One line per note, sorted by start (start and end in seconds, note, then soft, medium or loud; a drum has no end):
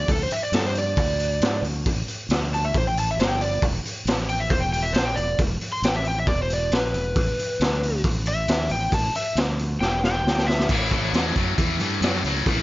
0.08 0.29 D2 medium
0.08 0.21 A4 loud
0.08 kick loud
0.08 open hi-hat medium
0.23 0.32 C5 medium
0.31 0.43 E5 medium
0.31 muted fingered electric bass stroke soft
0.31 open hi-hat medium
0.43 0.53 D5 medium
0.52 0.94 G2 loud
0.52 0.64 A4 loud
0.52 snare loud
0.52 open hi-hat medium
0.66 0.76 C5 medium
0.75 1.63 D5 loud
0.75 open hi-hat medium
0.97 1.38 D2 medium
0.97 kick loud
0.97 open hi-hat medium
1.20 open hi-hat medium
1.41 1.62 G#2 medium
1.41 snare loud
1.41 open hi-hat medium
1.62 1.84 D2 medium
1.62 open hi-hat medium
1.86 2.06 A1 medium
1.86 kick loud
1.86 open hi-hat medium
2.07 muted fingered electric bass stroke soft
2.07 open hi-hat medium
2.29 2.71 D2 medium
2.29 snare loud
2.29 open hi-hat medium
2.54 2.64 A5 medium
2.54 open hi-hat medium
2.65 2.75 E5 loud
2.74 3.16 A1 medium
2.74 2.87 C5 medium
2.74 kick loud
2.74 open hi-hat medium
2.87 2.97 G5 medium
2.97 3.09 A5 loud
2.97 open hi-hat medium
3.11 3.20 E5 medium
3.17 3.59 G1 medium
3.17 3.30 C5 loud
3.17 snare loud
3.17 open hi-hat medium
3.29 3.40 G5 medium
3.41 3.63 D5 loud
3.41 open hi-hat medium
3.62 3.83 E1 medium
3.62 kick loud
3.62 open hi-hat medium
3.83 muted fingered electric bass stroke soft
3.83 open hi-hat medium
4.05 4.47 A1 medium
4.05 snare loud
4.05 open hi-hat medium
4.29 4.40 G5 loud
4.29 open hi-hat medium
4.40 4.51 E5 loud
4.50 4.91 E1 medium
4.50 4.61 C5 medium
4.50 kick loud
4.50 open hi-hat medium
4.60 4.71 G5 medium
4.73 4.84 G5 medium
4.73 open hi-hat medium
4.83 4.94 E5 medium
4.93 5.15 A#1 medium
4.93 5.05 C5 loud
4.93 snare loud
4.93 open hi-hat medium
5.05 5.16 G5 medium
5.16 5.38 E1 medium
5.16 5.38 D5 loud
5.16 open hi-hat medium
5.38 5.59 E1 medium
5.38 kick loud
5.38 open hi-hat medium
5.61 muted fingered electric bass stroke soft
5.61 open hi-hat medium
5.72 5.83 C6 loud
5.82 6.24 A1 loud
5.82 5.95 G5 medium
5.82 snare loud
5.82 open hi-hat medium
5.96 6.06 E5 medium
6.05 6.17 G5 loud
6.05 open hi-hat medium
6.20 6.28 E5 loud
6.27 6.68 E1 medium
6.27 6.39 D5 medium
6.27 kick loud
6.27 open hi-hat medium
6.43 6.51 C5 medium
6.50 6.73 D5 medium
6.50 open hi-hat medium
6.72 6.92 A#1 medium
6.72 8.01 B4 loud
6.72 snare loud
6.72 open hi-hat medium
6.94 7.14 E1 medium
6.94 open hi-hat medium
7.16 7.36 A1 medium
7.16 kick loud
7.16 open hi-hat medium
7.37 muted fingered electric bass stroke soft
7.37 open hi-hat medium
7.60 8.01 D2 medium
7.60 snare loud
7.60 open hi-hat medium
7.83 open hi-hat medium
8.04 8.45 A1 loud
8.04 kick loud
8.04 open hi-hat medium
8.26 8.70 E5 loud
8.26 open hi-hat medium
8.47 8.68 D#2 loud
8.47 snare loud
8.47 open hi-hat medium
8.69 8.91 A1 medium
8.69 8.92 G5 medium
8.69 open hi-hat medium
8.92 9.13 A1 loud
8.92 9.15 A5 loud
8.92 kick loud
8.92 open hi-hat medium
9.13 9.37 E5 loud
9.13 muted fingered electric bass stroke soft
9.13 open hi-hat medium
9.35 9.77 D2 medium
9.35 snare loud
9.35 open hi-hat medium
9.59 open hi-hat medium
9.80 10.22 E1 medium
9.80 10.02 G5 medium
9.80 snare medium
10.04 10.47 G5 medium
10.04 snare medium
10.24 10.66 D2 medium
10.24 snare medium
10.38 snare medium
10.48 10.69 E5 loud
10.48 snare loud
10.60 snare medium
10.69 11.10 A1 medium
10.69 10.90 A2 medium
10.69 10.90 E3 medium
10.69 kick loud
10.69 crash loud
10.91 11.12 A2 medium
10.91 11.12 E3 medium
10.91 kick medium
10.91 open hi-hat medium
11.13 11.34 E2 medium
11.13 11.34 A2 medium
11.13 11.34 F#3 medium
11.13 snare loud
11.13 open hi-hat medium
11.36 11.56 F#2 medium
11.36 11.56 A2 medium
11.36 11.56 F#3 medium
11.36 kick medium
11.36 open hi-hat medium
11.57 11.79 E2 medium
11.57 11.77 A2 medium
11.57 11.78 E3 medium
11.57 kick loud
11.57 open hi-hat medium
11.79 12.00 G2 medium
11.79 12.00 A2 medium
11.79 12.00 E3 medium
11.79 open hi-hat medium
12.01 12.22 F#2 medium
12.01 12.22 A2 medium
12.01 12.22 F#3 loud
12.01 snare loud
12.01 open hi-hat medium
12.24 12.45 C#2 medium
12.24 12.45 A2 medium
12.24 12.45 F#3 medium
12.24 open hi-hat medium
12.46 12.62 A1 medium
12.46 12.62 A2 medium
12.46 12.62 E3 medium
12.46 kick loud
12.46 open hi-hat medium